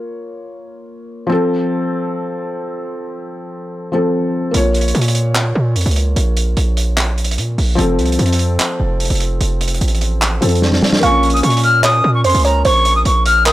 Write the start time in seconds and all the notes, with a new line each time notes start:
Already playing: A#3 F4 C#5
1.27 F3 C4
1.32 A4
3.92 F3 C4 A4
4.51 A#1 A#3 F4, closed hi-hat
4.57 C#5
4.74 closed hi-hat
4.81 closed hi-hat
4.88 closed hi-hat
4.95 A#2, closed hi-hat
5.01 closed hi-hat
5.08 closed hi-hat
5.15 closed hi-hat
5.35 clap, closed hi-hat
5.55 A#2
5.76 F2, closed hi-hat
5.81 closed hi-hat
5.86 C#2, closed hi-hat
5.91 closed hi-hat
5.96 closed hi-hat
6.16 A#1, closed hi-hat
6.37 closed hi-hat
6.57 A#1, closed hi-hat
6.77 closed hi-hat
6.97 clap, closed hi-hat
7.18 closed hi-hat
7.24 closed hi-hat
7.31 closed hi-hat
7.38 A#2, closed hi-hat
7.58 A#1, open hi-hat
7.75 F1 F3 C4, closed hi-hat
7.81 A4
7.99 C2, closed hi-hat
8.06 closed hi-hat
8.12 closed hi-hat
8.19 F2, closed hi-hat
8.26 closed hi-hat
8.33 closed hi-hat
8.39 closed hi-hat
8.60 clap, closed hi-hat
8.80 F1
9.00 closed hi-hat
9.05 closed hi-hat
9.10 F1, closed hi-hat
9.15 closed hi-hat
9.20 closed hi-hat
9.41 F1, closed hi-hat
9.61 closed hi-hat
9.68 closed hi-hat
9.74 closed hi-hat
9.81 A1, closed hi-hat
9.88 closed hi-hat
9.95 closed hi-hat
10.01 closed hi-hat
10.22 clap, closed hi-hat
10.41 F2 F3 C4 A4, closed hi-hat
10.49 closed hi-hat
10.55 closed hi-hat
10.62 snare
10.72 snare
10.82 snare
10.93 snare
11.00 A#1 A#3 F4 F5 C#6, closed hi-hat
11.06 C#4
11.23 closed hi-hat
11.30 D#6, closed hi-hat
11.37 closed hi-hat
11.43 A#2 C#6, closed hi-hat
11.50 closed hi-hat
11.57 closed hi-hat
11.63 F6, closed hi-hat
11.84 C#5 D#6, clap, closed hi-hat
12.04 A#2
12.14 C#6
12.24 F2 C5 C6, closed hi-hat
12.29 closed hi-hat
12.34 C#2, closed hi-hat
12.40 closed hi-hat
12.45 C#5 A#5, closed hi-hat
12.65 A#1 C5 C#6, closed hi-hat
12.85 closed hi-hat
12.96 D#6
13.05 A#1 C#6, closed hi-hat
13.26 F6, closed hi-hat
13.46 A#4 D#6, clap, closed hi-hat